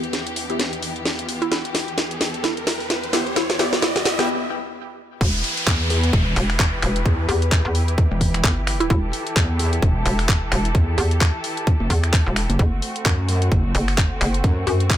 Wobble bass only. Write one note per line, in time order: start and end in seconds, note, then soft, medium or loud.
5.67 6.12 E2 loud
6.13 6.35 E1 loud
7.06 7.27 E2 medium
8.11 8.42 E1 medium
9.36 9.81 E2 loud
9.82 10.04 E1 loud
10.75 10.96 E2 medium
11.80 11.89 F#1 medium
12.50 12.58 F#1 loud
13.05 13.50 F#2 loud
13.52 13.73 F#1 loud
14.44 14.65 F#2 loud